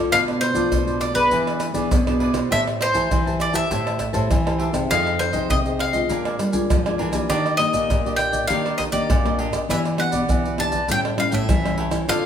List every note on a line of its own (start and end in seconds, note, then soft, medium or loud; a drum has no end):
0.00 0.50 A3 medium
0.00 0.50 D4 medium
0.00 0.51 F4 medium
0.00 0.10 A4 soft
0.00 0.10 C5 soft
0.11 0.68 B2 medium
0.11 0.50 B2 loud
0.11 0.25 F4 medium
0.11 0.26 A4 medium
0.11 0.26 B4 medium
0.11 0.25 D5 medium
0.11 0.20 F5 loud
0.11 pandeiro medium
0.11 tamborim medium
0.11 maracas medium
0.11 surdo medium
0.27 0.40 A4 soft
0.27 0.40 B4 soft
0.27 0.41 D5 soft
0.27 pandeiro soft
0.27 tamborim medium
0.27 maracas soft
0.41 1.01 C5 medium
0.41 muted cavaquinho stroke soft
0.41 pandeiro medium
0.41 tamborim medium
0.54 0.68 F3 medium
0.54 0.80 A3 medium
0.54 0.80 D4 medium
0.54 0.81 F4 medium
0.54 0.85 A4 medium
0.54 0.85 B4 medium
0.54 0.84 D5 medium
0.54 pandeiro medium
0.54 maracas medium
0.54 surdo soft
0.71 1.28 B2 medium
0.71 1.23 B2 medium
0.71 pandeiro medium
0.71 tamborim medium
0.71 maracas medium
0.71 surdo medium
0.86 1.11 A3 medium
0.86 1.12 D4 medium
0.86 1.12 F4 medium
0.86 1.16 A4 soft
0.86 1.14 B4 soft
0.86 1.13 D5 medium
0.86 pandeiro soft
0.86 maracas soft
1.01 1.15 D5 medium
1.01 pandeiro medium
1.01 tamborim medium
1.01 maracas medium
1.13 1.70 B3 medium
1.13 1.70 D4 medium
1.13 1.71 G#4 medium
1.13 1.30 A4 medium
1.13 1.72 B4 medium
1.13 1.30 B4 medium
1.13 1.29 D5 medium
1.13 pandeiro medium
1.13 maracas medium
1.13 surdo soft
1.30 1.88 E3 medium
1.30 1.70 E3 medium
1.30 1.45 E4 medium
1.30 1.46 G#4 medium
1.30 1.46 B4 medium
1.30 1.46 D5 medium
1.30 pandeiro medium
1.30 maracas medium
1.30 surdo medium
1.47 1.60 G#4 soft
1.47 1.60 B4 soft
1.47 1.61 D5 soft
1.47 pandeiro soft
1.47 tamborim medium
1.47 maracas soft
1.60 muted cavaquinho stroke soft
1.60 pandeiro medium
1.60 tamborim medium
1.60 maracas medium
1.73 1.88 E3 loud
1.73 2.00 B3 medium
1.73 2.00 D4 medium
1.73 2.00 G#4 medium
1.73 2.05 G#4 medium
1.73 2.05 B4 medium
1.73 2.04 D5 medium
1.73 pandeiro medium
1.73 maracas medium
1.73 surdo soft
1.91 2.48 B2 medium
1.91 2.30 B2 loud
1.91 pandeiro medium
1.91 tamborim medium
1.91 maracas medium
1.91 surdo loud
2.06 2.32 B3 medium
2.06 2.32 D4 medium
2.06 2.32 G#4 medium
2.06 2.19 G#4 soft
2.06 2.20 B4 soft
2.06 2.20 D5 medium
2.06 pandeiro soft
2.06 tamborim medium
2.06 maracas soft
2.20 2.34 E4 medium
2.20 2.34 G#4 medium
2.20 2.34 B4 medium
2.20 2.32 D5 medium
2.20 pandeiro medium
2.34 2.48 B2 medium
2.34 2.90 E4 medium
2.34 2.90 G4 medium
2.34 2.50 G#4 soft
2.34 2.49 B4 soft
2.34 2.91 C5 medium
2.34 pandeiro medium
2.34 tamborim medium
2.34 maracas medium
2.34 surdo soft
2.51 2.90 A2 loud
2.51 3.08 A3 medium
2.51 2.65 G4 medium
2.51 2.65 C5 medium
2.51 2.60 E5 loud
2.51 2.65 E5 medium
2.51 2.65 A5 medium
2.51 pandeiro medium
2.51 tamborim medium
2.51 maracas medium
2.51 surdo medium
2.66 2.79 C5 soft
2.66 2.79 E5 soft
2.66 2.79 A5 soft
2.66 pandeiro soft
2.66 tamborim medium
2.66 maracas soft
2.79 3.38 C5 medium
2.79 muted cavaquinho stroke soft
2.79 pandeiro medium
2.79 tamborim medium
2.93 3.08 E3 medium
2.93 3.20 E4 medium
2.93 3.21 G4 medium
2.93 3.24 C5 medium
2.93 3.21 C5 medium
2.93 3.24 E5 medium
2.93 3.23 A5 medium
2.93 pandeiro medium
2.93 maracas medium
2.93 surdo soft
3.11 3.68 E3 medium
3.11 3.62 E3 medium
3.11 pandeiro medium
3.11 tamborim medium
3.11 maracas medium
3.11 surdo medium
3.26 3.52 E4 medium
3.26 3.52 G4 medium
3.26 3.52 C5 medium
3.26 3.54 C5 soft
3.26 3.52 E5 soft
3.26 3.51 A5 medium
3.26 pandeiro soft
3.26 maracas soft
3.40 3.55 D5 medium
3.40 pandeiro medium
3.40 tamborim medium
3.40 maracas medium
3.53 3.65 E4 medium
3.53 3.65 G4 medium
3.53 3.65 C5 medium
3.53 3.69 C5 medium
3.53 3.69 E5 medium
3.53 4.12 E5 loud
3.53 3.68 A5 medium
3.53 pandeiro medium
3.53 maracas medium
3.53 surdo soft
3.70 4.10 A2 medium
3.70 4.28 A3 medium
3.70 3.99 E4 medium
3.70 3.84 G4 medium
3.70 3.99 G4 medium
3.70 3.85 C5 medium
3.70 3.99 C5 medium
3.70 3.85 E5 medium
3.70 3.85 A5 medium
3.70 pandeiro medium
3.70 maracas medium
3.70 surdo medium
3.86 3.99 C5 soft
3.86 3.99 E5 soft
3.86 4.00 A5 medium
3.86 pandeiro soft
3.86 tamborim medium
3.86 maracas soft
3.99 muted cavaquinho stroke soft
3.99 pandeiro medium
3.99 tamborim medium
3.99 maracas medium
3.99 surdo soft
4.13 4.28 A2 medium
4.13 4.39 E4 medium
4.13 4.40 G4 medium
4.13 4.40 C5 medium
4.13 4.44 C5 medium
4.13 4.44 E5 medium
4.13 4.43 A5 medium
4.13 pandeiro medium
4.13 maracas medium
4.13 surdo soft
4.30 4.88 E3 soft
4.30 4.69 E3 loud
4.30 pandeiro medium
4.30 tamborim medium
4.30 maracas medium
4.30 surdo loud
4.45 4.71 E4 medium
4.45 4.71 G4 medium
4.45 4.72 C5 medium
4.45 4.58 C5 soft
4.45 4.59 E5 soft
4.45 4.59 A5 soft
4.45 pandeiro soft
4.45 tamborim medium
4.45 maracas soft
4.59 4.73 G4 medium
4.59 4.74 C5 medium
4.59 4.72 E5 medium
4.59 4.71 A5 medium
4.59 pandeiro medium
4.72 4.87 C3 medium
4.72 5.29 D#4 medium
4.72 5.29 G#4 medium
4.72 5.29 C5 medium
4.72 4.89 C5 soft
4.72 4.88 E5 soft
4.72 4.88 A5 soft
4.72 pandeiro medium
4.72 tamborim medium
4.72 maracas medium
4.72 surdo soft
4.89 5.29 F2 loud
4.89 5.47 F3 medium
4.89 5.04 F4 medium
4.89 5.04 G#4 medium
4.89 5.05 C5 medium
4.89 5.04 D#5 medium
4.89 5.19 F5 medium
4.89 pandeiro medium
4.89 tamborim medium
4.89 maracas medium
4.89 surdo medium
5.05 5.18 G#4 soft
5.05 5.19 C5 soft
5.05 5.19 D#5 soft
5.05 pandeiro soft
5.05 tamborim medium
5.05 maracas soft
5.19 5.48 C5 medium
5.19 muted cavaquinho stroke soft
5.19 pandeiro medium
5.19 tamborim medium
5.19 maracas medium
5.33 5.47 C3 medium
5.33 5.60 D#4 medium
5.33 5.60 G#4 medium
5.33 5.64 G#4 medium
5.33 5.63 C5 medium
5.33 5.60 C5 medium
5.33 5.63 D#5 medium
5.33 pandeiro medium
5.33 maracas medium
5.33 surdo soft
5.50 6.07 C3 soft
5.50 6.01 C3 medium
5.50 5.58 D#5 medium
5.50 pandeiro medium
5.50 tamborim medium
5.50 maracas medium
5.50 surdo medium
5.65 5.91 D#4 medium
5.65 5.91 G#4 medium
5.65 5.94 G#4 soft
5.65 5.93 C5 soft
5.65 5.91 C5 medium
5.65 5.92 D#5 soft
5.65 pandeiro soft
5.65 maracas soft
5.79 6.66 F5 medium
5.79 pandeiro medium
5.79 tamborim medium
5.93 6.49 G#3 soft
5.93 6.50 D4 medium
5.93 6.50 F4 medium
5.93 6.09 G#4 medium
5.93 6.08 C5 medium
5.93 6.08 D#5 medium
5.93 pandeiro medium
5.93 maracas medium
5.93 surdo soft
6.10 6.36 A#2 medium
6.10 6.67 A#2 medium
6.10 6.24 D4 medium
6.10 6.24 A#4 medium
6.10 6.24 D5 medium
6.10 6.24 G#5 medium
6.10 pandeiro medium
6.10 maracas medium
6.10 surdo medium
6.25 6.38 A#4 soft
6.25 6.38 D5 soft
6.25 6.39 G#5 medium
6.25 pandeiro soft
6.25 tamborim medium
6.25 maracas soft
6.39 6.67 G3 medium
6.39 muted cavaquinho stroke soft
6.39 pandeiro medium
6.39 tamborim medium
6.39 maracas medium
6.52 6.79 G#3 medium
6.52 6.80 D4 medium
6.52 6.80 F4 medium
6.52 6.84 A#4 medium
6.52 6.83 D5 medium
6.52 6.82 G#5 medium
6.52 pandeiro medium
6.52 maracas medium
6.52 surdo soft
6.70 6.97 F3 medium
6.70 7.27 F3 soft
6.70 pandeiro medium
6.70 tamborim medium
6.70 maracas medium
6.70 surdo loud
6.85 7.11 G#3 medium
6.85 7.11 D4 soft
6.85 7.11 F4 medium
6.85 6.98 A#4 soft
6.85 6.99 D5 soft
6.85 6.99 G#5 medium
6.85 pandeiro soft
6.85 tamborim medium
6.85 maracas soft
6.98 7.27 E3 medium
6.98 7.13 D4 medium
6.98 7.13 A#4 medium
6.98 7.12 D5 medium
6.98 7.11 G#5 medium
6.98 pandeiro medium
7.12 7.58 A#3 medium
7.12 7.69 D4 medium
7.12 7.59 G4 medium
7.12 7.29 A#4 soft
7.12 7.28 D5 soft
7.12 7.27 G#5 soft
7.12 pandeiro medium
7.12 tamborim medium
7.12 maracas medium
7.12 surdo soft
7.30 7.87 D#3 medium
7.30 7.68 D#3 loud
7.30 7.44 D4 medium
7.30 7.44 G4 medium
7.30 7.57 D5 medium
7.30 7.44 D5 medium
7.30 7.44 D#5 medium
7.30 pandeiro medium
7.30 tamborim medium
7.30 maracas medium
7.30 surdo medium
7.45 7.58 G4 soft
7.45 7.59 D5 soft
7.45 7.58 D#5 soft
7.45 pandeiro soft
7.45 tamborim medium
7.45 maracas soft
7.57 8.00 A#3 medium
7.57 8.00 G4 medium
7.57 8.14 D#5 medium
7.57 muted cavaquinho stroke soft
7.57 pandeiro medium
7.57 tamborim medium
7.57 maracas medium
7.72 7.87 A#2 medium
7.72 8.03 G4 medium
7.72 8.02 D5 medium
7.72 8.03 D#5 medium
7.72 pandeiro medium
7.72 maracas medium
7.72 surdo soft
7.90 8.47 A#2 soft
7.90 8.41 A#2 medium
7.90 pandeiro medium
7.90 tamborim medium
7.90 maracas medium
7.90 surdo medium
8.05 8.45 A#3 medium
8.05 8.45 D4 medium
8.05 8.46 G4 medium
8.05 8.33 G4 soft
8.05 8.31 D5 soft
8.05 8.32 D#5 soft
8.05 pandeiro soft
8.05 maracas soft
8.16 8.47 G5 medium
8.16 pandeiro medium
8.16 tamborim medium
8.16 maracas medium
8.32 8.48 G4 soft
8.32 8.47 D5 medium
8.32 8.48 D#5 medium
8.32 pandeiro medium
8.32 maracas medium
8.32 surdo soft
8.48 9.06 D#3 medium
8.48 8.88 D#3 loud
8.48 8.90 A#3 medium
8.48 8.63 D4 medium
8.48 8.90 D4 medium
8.48 8.64 G4 medium
8.48 8.90 G4 medium
8.48 8.64 D#5 medium
8.48 8.79 F5 medium
8.48 pandeiro medium
8.48 maracas medium
8.48 surdo medium
8.52 8.64 D5 medium
8.65 8.78 G4 soft
8.65 8.79 D5 soft
8.65 8.78 D#5 soft
8.65 pandeiro soft
8.65 tamborim medium
8.65 maracas soft
8.78 8.83 D#5 medium
8.78 muted cavaquinho stroke soft
8.78 pandeiro medium
8.78 tamborim medium
8.78 surdo soft
8.92 9.06 D#3 loud
8.92 9.19 A#3 medium
8.92 9.19 D4 medium
8.92 9.19 G4 medium
8.92 9.23 G4 medium
8.92 9.22 D5 medium
8.92 9.35 D5 medium
8.92 9.23 D#5 medium
8.92 pandeiro medium
8.92 maracas medium
8.92 surdo soft
9.09 9.66 A#2 soft
9.09 9.48 A#2 loud
9.09 pandeiro medium
9.09 tamborim medium
9.09 maracas medium
9.09 surdo loud
9.24 9.65 A#3 medium
9.24 9.65 D4 medium
9.24 9.65 G4 medium
9.24 9.38 G4 soft
9.24 9.39 D5 soft
9.24 9.39 D#5 soft
9.24 pandeiro soft
9.24 tamborim medium
9.24 maracas soft
9.38 9.53 D4 medium
9.38 9.53 G4 medium
9.38 9.51 D5 medium
9.38 9.52 D#5 medium
9.38 pandeiro medium
9.52 9.66 A#2 medium
9.52 9.68 G4 soft
9.52 9.67 D5 medium
9.52 9.68 D#5 soft
9.52 pandeiro medium
9.52 tamborim medium
9.52 maracas medium
9.52 surdo soft
9.69 10.26 E3 medium
9.69 10.08 E3 loud
9.69 9.87 B3 medium
9.69 9.87 D4 medium
9.69 9.83 E4 medium
9.69 9.87 G4 medium
9.69 9.84 G4 medium
9.69 9.84 B4 medium
9.69 9.84 D5 medium
9.69 9.79 E5 medium
9.69 pandeiro medium
9.69 tamborim medium
9.69 maracas medium
9.69 surdo medium
9.85 9.97 G4 soft
9.85 9.97 B4 soft
9.85 9.98 D5 soft
9.85 pandeiro soft
9.85 tamborim medium
9.85 maracas soft
9.98 10.24 B3 medium
9.98 10.24 D4 medium
9.98 10.24 G4 medium
9.98 10.55 F#5 medium
9.98 muted cavaquinho stroke soft
9.98 pandeiro medium
9.98 tamborim medium
10.12 10.26 B2 medium
10.12 10.43 G4 medium
10.12 10.42 B4 medium
10.12 10.42 D5 medium
10.12 pandeiro medium
10.12 maracas medium
10.12 surdo soft
10.29 10.86 B2 medium
10.29 10.80 E3 medium
10.29 10.46 B3 medium
10.29 10.47 D4 medium
10.29 10.47 G4 medium
10.29 pandeiro medium
10.29 tamborim medium
10.29 maracas medium
10.29 surdo medium
10.44 10.73 G4 soft
10.44 10.72 B4 soft
10.44 10.70 D5 medium
10.44 pandeiro soft
10.44 maracas soft
10.58 10.76 B3 medium
10.58 10.76 D4 medium
10.58 10.76 G4 medium
10.58 10.87 A5 medium
10.58 pandeiro medium
10.58 tamborim medium
10.72 10.88 G4 medium
10.72 10.87 B4 medium
10.72 10.87 D5 medium
10.72 pandeiro medium
10.72 maracas medium
10.72 surdo soft
10.88 11.46 A2 medium
10.88 11.27 A2 loud
10.88 11.14 G3 medium
10.88 11.14 C#4 medium
10.88 11.02 E4 medium
10.88 11.15 E4 medium
10.88 11.03 A4 medium
10.88 11.03 C#5 medium
10.88 11.03 G5 medium
10.88 10.99 G5 loud
10.88 pandeiro medium
10.88 maracas medium
10.88 surdo medium
11.04 11.17 A4 soft
11.04 11.17 C#5 soft
11.04 11.17 G5 soft
11.04 pandeiro soft
11.04 tamborim medium
11.04 maracas soft
11.17 11.43 G3 medium
11.17 11.43 C#4 medium
11.17 11.44 E4 medium
11.17 11.33 F5 medium
11.17 muted cavaquinho stroke soft
11.17 pandeiro medium
11.17 tamborim medium
11.31 11.46 A2 loud
11.31 11.62 A4 medium
11.31 11.62 C#5 medium
11.31 11.76 E5 medium
11.31 11.61 G5 medium
11.31 pandeiro medium
11.31 maracas medium
11.31 surdo soft
11.47 12.05 E3 soft
11.47 11.87 E3 loud
11.47 11.58 G3 medium
11.47 11.59 C#4 soft
11.47 11.59 E4 soft
11.47 pandeiro medium
11.47 tamborim medium
11.47 maracas medium
11.47 surdo loud
11.64 12.04 G3 medium
11.64 12.04 C#4 medium
11.64 12.04 E4 medium
11.64 11.77 A4 soft
11.64 11.78 C#5 soft
11.64 11.78 G5 medium
11.64 pandeiro soft
11.64 tamborim medium
11.64 maracas soft
11.77 11.92 E4 medium
11.77 11.92 A4 medium
11.77 11.91 C#5 medium
11.77 11.90 G5 medium
11.77 pandeiro medium
11.91 12.05 E3 medium
11.91 12.07 A4 soft
11.91 12.07 C#5 soft
11.91 12.06 G5 medium
11.91 pandeiro medium
11.91 tamborim medium
11.91 maracas medium
11.91 surdo soft
12.08 12.26 D3 medium
12.08 12.26 D3 loud
12.08 12.26 C4 medium
12.08 12.22 F4 medium
12.08 12.26 F4 medium
12.08 12.22 A4 medium
12.08 12.26 A4 medium
12.08 12.23 C5 medium
12.08 12.22 D5 medium
12.08 12.26 F5 loud
12.08 pandeiro medium
12.08 tamborim medium
12.08 maracas medium
12.08 surdo medium